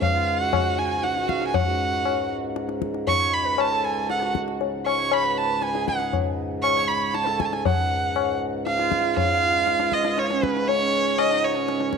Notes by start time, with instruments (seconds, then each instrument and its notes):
Already playing: harmonium C#2 G#2
0.02 violin F5, tabla tin, tabla ge
0.14 sarangi F4
0.27 violin F5
0.40 sarangi F#4, violin F#5
0.53 tabla na, tabla ge
0.78 violin G#5, tabla te
1.03 violin F#5, tabla te
1.16 sarangi F#4, tabla te
1.29 violin F5, tabla ke
1.41 tabla te
1.47 violin G#5
1.54 harmonium C#2 G#2, violin F#5, tabla tin, tabla ge
1.67 sarangi F#4
2.05 tabla na
2.56 tabla te
2.69 tabla te
2.82 tabla ke
2.94 tabla te
3.07 violin C#6, tabla tin, tabla ge
3.21 sarangi C#5
3.33 violin B5
3.45 sarangi B4
3.58 violin A5, tabla na
3.71 sarangi A4
3.85 violin G#5
4.10 violin F#5, tabla te
4.22 sarangi F#4, tabla te
4.35 tabla ke
4.48 tabla te
4.61 tabla tin
4.86 violin C#6, tabla na
4.98 sarangi C#5
5.12 violin B5, tabla na
5.24 sarangi B4
5.30 violin B5
5.38 violin A5
5.62 violin G#5, tabla te
5.74 sarangi G#4, tabla te
5.88 violin F#5, tabla ke
6.00 tabla te
6.13 tabla tin, tabla ge
6.63 violin C#6, tabla na
6.77 sarangi C#5
6.88 violin B5
7.14 violin A5, tabla te
7.26 sarangi A4, tabla te
7.40 violin G#5, tabla ke
7.46 violin A5
7.53 violin G#5, tabla te
7.65 harmonium C#2 G#2, sarangi G#4, violin F#5, tabla tin, tabla ge
8.16 tabla na
8.66 violin F5, tabla te
8.79 sarangi F4, tabla te
8.92 tabla ke
9.04 tabla te
9.17 violin F5, tabla tin, tabla ge
9.30 sarangi F4
9.67 tabla te
9.80 tabla te
9.92 violin D#5, tabla ke
10.05 tabla te
10.18 violin C#5, tabla te
10.30 sarangi C#4, tabla te
10.43 violin B4, tabla ke
10.57 tabla te
10.68 violin C#5, tabla tin
10.81 sarangi C#4
11.18 violin D#5, tabla na
11.32 sarangi D#4
11.44 violin C#5
11.49 sarangi D#4
11.56 sarangi C#4
11.68 tabla te
11.80 tabla te
11.93 tabla ke